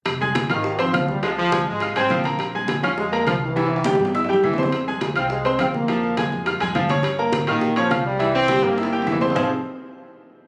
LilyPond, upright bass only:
\new Staff \with { instrumentName = "Upright bass" } { \clef bass \time 4/4 \key f \minor \tempo 4 = 207 f,,4. aes,,4. des,4~ | des,4. aes,,4 aes,,8 bes,,4~ | bes,,4. f,4. c,4~ | c,4. g,4 g,8 f,4~ |
f,4. c,4. f,4~ | f,4. f,4 f,8 g,4~ | g,4. bes,4. c,4~ | c,4. g,4. f,4 |
f,,8 r2. r8 | }